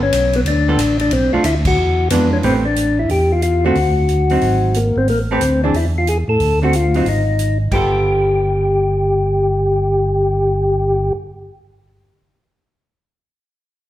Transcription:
Already playing: tonewheel organ G1
0.03 tonewheel organ C#4
0.12 tonewheel organ B1, hi-hat pedal, ride
0.33 tonewheel organ B3, ride
0.45 tonewheel organ D2 D4, ride
0.68 hollow-body jazz guitar G3 B3 F4 A4
0.78 tonewheel organ A1, hi-hat pedal, ride
0.99 tonewheel organ D4, ride
1.10 tonewheel organ B1 C4, ride
1.33 tonewheel organ B1 F4, hollow-body jazz guitar A3 D4 F4
1.44 tonewheel organ D2 E4, hi-hat pedal, ride
1.65 tonewheel organ F#4, kick, crash
1.76 tonewheel organ E2
2.10 tonewheel organ F2 B3, hollow-body jazz guitar E3 G#3 D4 F4, hi-hat pedal, ride
2.33 tonewheel organ C#4
2.43 tonewheel organ A1 C4, hollow-body jazz guitar A3 C4 G4 B4, open hi-hat
2.65 tonewheel organ D4
2.76 closed hi-hat
2.99 tonewheel organ E4
3.09 tonewheel organ E2 G4, open hi-hat
3.32 tonewheel organ F4
3.42 tonewheel organ F4, closed hi-hat
3.65 hollow-body jazz guitar D3 A3 C4 F#4, tonewheel organ F#4
3.75 tonewheel organ D2, open hi-hat
4.09 closed hi-hat
4.29 hollow-body jazz guitar F#3 C4 D#4, open hi-hat
4.41 tonewheel organ G#1, open hi-hat
4.74 tonewheel organ A#3, closed hi-hat
4.96 tonewheel organ G#1 C4
5.08 tonewheel organ A1 A#3, open hi-hat
5.31 hollow-body jazz guitar A3 C4 G4 B4, tonewheel organ C4
5.41 tonewheel organ D2, closed hi-hat
5.63 hollow-body jazz guitar E3 C4 D4 G#4, tonewheel organ D4
5.74 tonewheel organ E2 E4, open hi-hat
5.98 tonewheel organ F4
6.07 tonewheel organ G#4, closed hi-hat
6.28 tonewheel organ A2 A4
6.39 tonewheel organ D2, open hi-hat
6.62 hollow-body jazz guitar D3 A3 C4 F#4, tonewheel organ F#4
6.73 tonewheel organ F4, closed hi-hat
6.94 hollow-body jazz guitar F#3 C4 D#4, tonewheel organ F4, open hi-hat
7.05 tonewheel organ G#1 D#4, open hi-hat
7.39 closed hi-hat
7.71 tonewheel organ G1 G4, hollow-body jazz guitar G3 B3 F4 A4, kick, crash

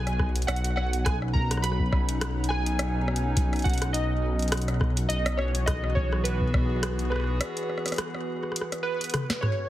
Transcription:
Already playing: detuned saw bass B1, synth texture F#4 F#5, synth keys G#5
0.07 cross-stick, closed hi-hat
0.19 kick, cross-stick
0.36 closed hi-hat
0.42 closed hi-hat
0.47 detuned saw bass B1, analog synth pad B2, synth keys F#5, cross-stick, closed hi-hat
0.56 closed hi-hat
0.64 closed hi-hat
0.69 analog synth pad C#4 D#4
0.74 analog synth pad F#3, synth keys F#5, cross-stick
0.93 closed hi-hat
1.05 synth keys G#5, kick, cross-stick, closed hi-hat
1.22 cross-stick
1.33 synth keys A#5, kick
1.51 cross-stick, closed hi-hat
1.57 cross-stick
1.62 synth keys B5, cross-stick, closed hi-hat
1.72 cross-stick
1.80 kick
1.92 kick, cross-stick
2.09 closed hi-hat
2.21 cross-stick, closed hi-hat
2.44 closed hi-hat
2.49 synth keys G#5, cross-stick
2.66 closed hi-hat
2.79 cross-stick, closed hi-hat
3.08 cross-stick
3.16 closed hi-hat
3.37 kick, closed hi-hat
3.53 cross-stick, closed hi-hat
3.56 closed hi-hat
3.59 closed hi-hat
3.62 synth keys F#5, kick, closed hi-hat
3.65 closed hi-hat
3.70 closed hi-hat
3.74 closed hi-hat
3.78 closed hi-hat
3.82 cross-stick, closed hi-hat
3.93 synth keys D#5, closed hi-hat
4.39 closed hi-hat
4.42 closed hi-hat
4.48 closed hi-hat
4.52 cross-stick, closed hi-hat
4.57 closed hi-hat
4.62 closed hi-hat
4.68 cross-stick, closed hi-hat
4.81 kick, cross-stick
4.97 closed hi-hat
5.09 detuned saw bass B1, analog synth pad E3, synth keys D#5, closed hi-hat
5.14 analog synth pad B3
5.26 cross-stick, closed hi-hat
5.37 analog synth pad F#4, synth keys C#5, cross-stick
5.55 closed hi-hat
5.66 analog synth pad G#4, synth keys D#5, kick, cross-stick, closed hi-hat
5.84 cross-stick
5.95 synth keys C#5, kick
6.13 cross-stick
6.24 synth keys B4, closed hi-hat
6.41 kick
6.54 kick, cross-stick
6.83 cross-stick, closed hi-hat
6.99 closed hi-hat
7.10 synth keys B4, cross-stick
7.16 cross-stick
7.20 cross-stick
7.24 cross-stick
7.41 cross-stick, closed hi-hat
7.57 closed hi-hat
7.70 cross-stick
7.78 cross-stick
7.86 cross-stick, closed hi-hat
7.88 closed hi-hat
7.92 cross-stick, closed hi-hat
7.94 closed hi-hat
7.96 cross-stick, closed hi-hat
7.98 closed hi-hat
8.15 cross-stick
8.43 cross-stick
8.52 cross-stick
8.56 closed hi-hat
8.61 cross-stick
8.72 cross-stick, closed hi-hat
8.83 synth keys B4
9.01 closed hi-hat
9.04 closed hi-hat
9.10 closed hi-hat
9.14 cross-stick, closed hi-hat, mid tom
9.30 cross-stick, snare
9.41 synth keys C#5, cross-stick, mid tom

